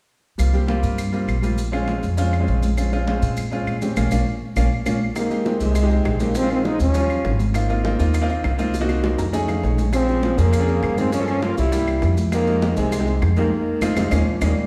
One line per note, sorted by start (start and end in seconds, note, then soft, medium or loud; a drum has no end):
0.38 0.80 C2 medium
0.38 0.49 G3 medium
0.38 0.49 A#3 medium
0.38 0.49 C4 medium
0.38 0.50 F4 medium
0.38 high conga soft
0.38 claves medium
0.38 maracas medium
0.53 0.64 G3 medium
0.53 0.64 A#3 medium
0.53 0.64 C4 medium
0.53 0.65 G4 medium
0.53 high conga soft
0.53 maracas soft
0.67 0.99 G3 medium
0.67 1.00 A#3 medium
0.67 1.00 C4 medium
0.67 1.00 F4 medium
0.67 high conga medium
0.67 maracas soft
0.83 1.25 G2 medium
0.83 maracas medium
0.98 high conga soft
0.98 claves medium
0.98 maracas medium
1.12 1.34 G3 medium
1.12 1.34 A#3 medium
1.12 1.34 C4 medium
1.12 1.35 F4 medium
1.12 high conga soft
1.12 maracas soft
1.28 1.97 A#1 medium
1.28 high conga soft
1.28 claves medium
1.28 maracas soft
1.42 1.58 G3 medium
1.42 1.58 A#3 medium
1.42 1.58 C4 medium
1.42 1.58 F4 medium
1.42 high conga medium
1.42 maracas medium
1.58 high conga soft
1.58 maracas medium
1.72 2.04 G#3 medium
1.72 2.04 C4 medium
1.72 2.04 C#4 medium
1.72 2.04 F4 loud
1.72 high conga soft
1.72 claves medium
1.72 maracas soft
1.88 high conga medium
1.88 maracas soft
2.03 2.45 F2 medium
2.03 high conga soft
2.03 maracas medium
2.17 2.33 G#3 medium
2.17 2.33 C4 medium
2.17 2.34 C#4 medium
2.17 2.34 F4 loud
2.17 high conga soft
2.17 maracas medium
2.33 high conga soft
2.33 claves medium
2.33 maracas soft
2.40 2.66 G#3 medium
2.40 2.66 C4 medium
2.40 2.67 C#4 medium
2.40 2.67 F4 medium
2.48 3.17 A#1 medium
2.48 high conga soft
2.48 maracas soft
2.63 high conga medium
2.63 maracas medium
2.77 2.88 G#3 medium
2.77 2.88 C4 medium
2.77 2.88 C#4 medium
2.77 2.88 F4 medium
2.77 claves medium
2.77 maracas medium
2.92 3.03 G#3 medium
2.92 3.03 C4 medium
2.92 3.03 C#4 medium
2.92 3.03 F4 medium
2.92 high conga soft
2.92 maracas soft
3.07 3.38 G#3 medium
3.07 3.39 C4 medium
3.07 3.39 C#4 medium
3.07 3.39 F4 medium
3.07 high conga loud
3.07 maracas soft
3.22 3.64 A#2 medium
3.22 maracas medium
3.37 high conga soft
3.37 claves medium
3.37 maracas medium
3.51 3.73 G#3 medium
3.51 3.73 C4 medium
3.51 3.73 C#4 medium
3.51 3.73 F4 medium
3.51 high conga soft
3.51 maracas soft
3.67 3.95 A#2 medium
3.67 high conga soft
3.67 claves medium
3.67 maracas soft
3.81 3.97 G#3 medium
3.81 3.97 C4 medium
3.81 3.96 C#4 medium
3.81 3.97 G4 medium
3.81 high conga medium
3.81 maracas medium
3.97 4.08 A#1 medium
3.97 4.06 A#3 medium
3.97 4.07 C#4 medium
3.97 4.07 F4 medium
3.97 high conga loud
3.97 claves medium
3.97 maracas medium
4.11 4.23 A#1 medium
4.11 4.21 A#3 medium
4.11 4.21 C#4 medium
4.11 4.21 F4 medium
4.11 high conga medium
4.11 claves medium
4.11 maracas medium
4.56 4.67 A#1 medium
4.56 4.66 A#3 medium
4.56 4.66 C#4 medium
4.56 4.66 F4 medium
4.56 high conga medium
4.56 claves medium
4.56 maracas medium
4.86 4.97 A#1 medium
4.86 4.96 A#3 medium
4.86 4.96 C#4 medium
4.86 4.96 F4 medium
4.86 high conga loud
4.86 claves loud
4.86 maracas medium
5.15 5.58 D#3 medium
5.15 5.26 G#3 medium
5.15 5.58 A#3 medium
5.15 5.26 C4 medium
5.15 5.27 D#4 medium
5.15 5.27 G4 medium
5.15 high bongo medium
5.15 high conga soft
5.15 claves medium
5.15 maracas medium
5.30 5.41 G#3 medium
5.30 5.41 C4 medium
5.30 5.41 D#4 medium
5.30 5.42 G4 medium
5.30 high conga soft
5.30 maracas soft
5.45 5.56 G#3 medium
5.45 5.56 C4 medium
5.45 5.56 D#4 medium
5.45 5.57 G4 medium
5.45 high bongo medium
5.45 high conga medium
5.45 maracas soft
5.60 6.02 C2 medium
5.60 6.22 C3 medium
5.60 5.76 G#3 medium
5.60 6.23 G#3 medium
5.60 5.76 C4 medium
5.60 5.76 D#4 medium
5.60 5.77 G4 medium
5.60 maracas medium
5.75 high bongo medium
5.75 high conga soft
5.75 claves medium
5.75 maracas medium
5.82 5.88 G#3 medium
5.82 5.88 C4 medium
5.82 5.88 D#4 medium
5.82 5.88 G4 medium
5.90 6.11 G#3 medium
5.90 6.11 C4 medium
5.90 6.11 D#4 medium
5.90 6.12 G4 medium
5.90 high conga soft
5.90 maracas soft
6.05 6.75 A#1 medium
6.05 high bongo medium
6.05 low bongo medium
6.05 high conga soft
6.05 claves medium
6.05 maracas soft
6.20 6.37 C#3 medium
6.20 6.35 G#3 medium
6.20 6.38 A#3 medium
6.20 6.35 C4 medium
6.20 6.35 D#4 medium
6.20 6.36 G4 medium
6.20 high conga medium
6.20 maracas medium
6.35 6.50 F3 medium
6.35 6.51 C4 loud
6.35 high bongo medium
6.35 high conga soft
6.35 maracas medium
6.42 6.84 G#3 medium
6.42 6.84 C4 medium
6.42 6.85 C#4 medium
6.42 6.85 F4 medium
6.50 6.67 D#3 medium
6.50 6.68 C4 medium
6.50 high bongo soft
6.50 claves medium
6.50 maracas soft
6.65 6.80 G#3 medium
6.65 6.81 D#4 loud
6.65 high bongo medium
6.65 high conga medium
6.65 maracas soft
6.80 7.22 D#2 medium
6.80 7.37 F3 medium
6.80 7.37 C#4 loud
6.80 high conga soft
6.80 maracas medium
6.94 7.42 G3 medium
6.94 7.43 C#4 medium
6.94 7.43 F4 medium
6.94 7.43 C5 medium
6.94 high bongo medium
6.94 high conga soft
6.94 maracas medium
7.10 high bongo soft
7.10 high conga soft
7.10 claves medium
7.10 maracas soft
7.25 7.94 G#1 medium
7.25 high bongo medium
7.25 low bongo medium
7.25 high conga soft
7.25 maracas soft
7.39 high bongo soft
7.39 high conga medium
7.39 maracas medium
7.54 7.65 A#3 medium
7.54 7.65 C4 medium
7.54 7.65 D#4 medium
7.54 7.66 F4 medium
7.54 high bongo medium
7.54 high conga soft
7.54 claves medium
7.54 maracas medium
7.69 7.80 A#3 medium
7.69 7.80 C4 medium
7.69 7.80 D#4 medium
7.69 7.80 F4 medium
7.69 high conga soft
7.69 maracas soft
7.84 7.95 A#3 medium
7.84 7.95 C4 medium
7.84 7.95 D#4 medium
7.84 7.95 F4 loud
7.84 high bongo soft
7.84 high conga loud
7.84 maracas soft
7.98 8.41 D#2 medium
7.98 8.15 A#3 medium
7.98 8.15 C4 medium
7.98 8.15 D#4 medium
7.98 8.15 F4 loud
7.98 maracas medium
8.14 high bongo medium
8.14 high conga soft
8.14 claves medium
8.14 maracas medium
8.21 8.27 A#3 loud
8.21 8.27 C4 medium
8.21 8.27 D#4 medium
8.21 8.27 F4 loud
8.28 8.50 A#3 medium
8.28 8.50 C4 medium
8.28 8.50 D#4 medium
8.28 8.50 F4 medium
8.28 maracas soft
8.44 9.13 C2 medium
8.44 high bongo medium
8.44 low bongo medium
8.44 high conga soft
8.44 claves medium
8.44 maracas soft
8.58 8.73 A#3 medium
8.58 8.74 C4 medium
8.58 8.74 D#4 medium
8.58 8.74 F4 loud
8.58 high conga medium
8.58 maracas medium
8.74 high bongo medium
8.74 high conga soft
8.74 maracas medium
8.80 9.23 A#3 medium
8.80 9.23 C4 medium
8.80 9.23 D#4 medium
8.80 9.23 F#4 loud
8.89 high bongo medium
8.89 high conga soft
8.89 claves medium
8.89 maracas soft
9.04 high bongo medium
9.04 high conga loud
9.04 maracas soft
9.18 9.60 F2 medium
9.18 9.32 A#5 medium
9.18 low bongo loud
9.18 high conga soft
9.18 maracas medium
9.33 9.81 A3 medium
9.33 9.81 C#4 medium
9.33 9.81 D#4 medium
9.33 9.82 G#4 loud
9.33 9.47 G#5 medium
9.33 high conga soft
9.33 maracas medium
9.48 9.62 F5 medium
9.48 low bongo medium
9.48 high conga soft
9.48 claves medium
9.48 maracas soft
9.63 10.33 A#1 medium
9.63 9.91 C#5 medium
9.63 low bongo medium
9.63 high conga soft
9.63 maracas soft
9.78 low bongo medium
9.78 high conga medium
9.78 maracas medium
9.93 10.39 F3 medium
9.93 10.03 C4 medium
9.93 10.40 C4 loud
9.93 10.04 C#4 medium
9.93 10.04 F4 medium
9.93 10.04 G#4 medium
9.93 high bongo medium
9.93 claves medium
9.93 maracas medium
10.08 10.18 C4 medium
10.08 10.19 C#4 medium
10.08 10.19 F4 medium
10.08 10.19 G#4 medium
10.08 high conga soft
10.08 maracas soft
10.23 10.34 C4 medium
10.23 10.34 C#4 medium
10.23 10.34 F4 medium
10.23 10.34 G#4 medium
10.23 high bongo medium
10.23 high conga loud
10.23 maracas soft
10.37 10.80 F2 medium
10.37 10.99 C#3 medium
10.37 11.00 A#3 loud
10.37 10.53 C4 medium
10.37 10.54 C#4 medium
10.37 10.54 F4 medium
10.37 10.54 G#4 medium
10.37 maracas medium
10.53 high bongo medium
10.53 high conga soft
10.53 claves medium
10.53 maracas medium
10.60 10.66 C4 medium
10.60 10.66 C#4 medium
10.60 10.66 F4 medium
10.60 10.66 G#4 loud
10.67 10.89 C4 medium
10.67 10.89 C#4 medium
10.67 10.89 F4 medium
10.67 10.89 G#4 medium
10.67 maracas soft
10.83 11.52 G2 medium
10.83 high bongo medium
10.83 low bongo medium
10.83 high conga soft
10.83 claves medium
10.83 maracas soft
10.97 11.12 D#3 medium
10.97 11.12 C4 medium
10.97 11.13 C4 medium
10.97 11.13 C#4 medium
10.97 11.13 F4 medium
10.97 11.13 G#4 medium
10.97 high conga medium
10.97 maracas medium
11.12 11.26 F3 medium
11.12 11.28 C#4 loud
11.12 high bongo medium
11.12 high conga soft
11.12 maracas medium
11.20 11.62 A#3 medium
11.20 11.62 C#4 medium
11.20 11.62 F4 medium
11.20 11.63 A4 medium
11.27 11.44 F3 medium
11.27 11.45 C#4 loud
11.27 high bongo soft
11.27 claves medium
11.27 maracas soft
11.42 11.56 A#3 medium
11.42 11.57 F4 loud
11.42 high bongo soft
11.42 high conga loud
11.42 maracas soft
11.57 11.99 C2 medium
11.57 12.13 G3 medium
11.57 12.14 E4 loud
11.57 high conga soft
11.57 maracas medium
11.72 12.20 G3 medium
11.72 12.20 A#3 medium
11.72 12.21 E4 medium
11.72 12.21 G4 medium
11.72 high bongo medium
11.72 high conga soft
11.72 maracas medium
11.87 high bongo soft
11.87 high conga soft
11.87 claves medium
11.87 maracas soft
12.02 12.72 F2 medium
12.02 high bongo medium
12.02 low bongo medium
12.02 high conga soft
12.02 maracas soft
12.17 high bongo soft
12.17 high conga medium
12.17 maracas medium
12.32 12.78 D#3 medium
12.32 12.43 G#3 medium
12.32 12.79 A#3 loud
12.32 12.43 C4 medium
12.32 12.43 D#4 medium
12.32 12.43 G4 medium
12.32 high bongo medium
12.32 high conga soft
12.32 claves medium
12.32 maracas medium
12.47 12.58 G#3 medium
12.47 12.58 C4 medium
12.47 12.58 D#4 medium
12.47 12.58 G4 medium
12.47 maracas soft
12.62 12.72 G#3 medium
12.62 12.73 C4 medium
12.62 12.73 D#4 medium
12.62 12.73 G4 medium
12.62 high bongo medium
12.62 high conga loud
12.62 maracas soft
12.77 13.19 C2 medium
12.77 13.22 C3 medium
12.77 12.93 G#3 medium
12.77 13.22 G#3 medium
12.77 12.93 C4 medium
12.77 12.93 D#4 medium
12.77 12.93 G#4 medium
12.77 maracas medium
12.92 high bongo medium
12.92 high conga soft
12.92 claves medium
12.92 maracas medium
12.99 13.04 G#3 medium
12.99 13.05 C4 medium
12.99 13.05 D#4 medium
12.99 13.05 G4 medium
13.06 13.27 G#3 medium
13.06 13.28 C4 medium
13.06 13.28 D#4 medium
13.06 13.28 G4 medium
13.06 high conga soft
13.06 maracas soft
13.22 13.50 F2 medium
13.22 high bongo medium
13.22 low bongo medium
13.22 high conga soft
13.22 claves medium
13.22 maracas soft
13.36 13.97 D#3 medium
13.36 13.52 G#3 medium
13.36 13.99 A#3 medium
13.36 13.52 C4 medium
13.36 13.52 D#4 medium
13.36 13.52 G4 medium
13.36 high conga medium
13.36 maracas medium
13.81 13.93 F2 medium
13.81 13.91 C4 medium
13.81 13.91 D#4 medium
13.81 13.91 F4 medium
13.81 low bongo medium
13.81 high conga loud
13.81 claves medium
13.81 maracas loud
13.96 14.08 F2 medium
13.96 14.13 C3 medium
13.96 14.14 G#3 medium
13.96 14.06 C4 medium
13.96 14.06 D#4 medium
13.96 14.06 F4 medium
13.96 low bongo loud
13.96 high conga medium
13.96 claves medium
13.96 maracas medium
14.11 14.23 D#2 medium
14.11 14.41 A#2 medium
14.11 14.42 F3 medium
14.11 14.21 A#3 medium
14.11 14.21 C#4 loud
14.11 14.21 D#4 medium
14.11 low bongo medium
14.11 high conga loud
14.11 claves medium
14.11 maracas medium
14.41 14.53 D#2 medium
14.41 14.67 A#2 medium
14.41 14.67 G3 medium
14.41 14.51 A#3 medium
14.41 14.51 C#4 medium
14.41 14.51 D#4 medium
14.41 low bongo medium
14.41 high conga medium
14.41 claves loud
14.41 maracas medium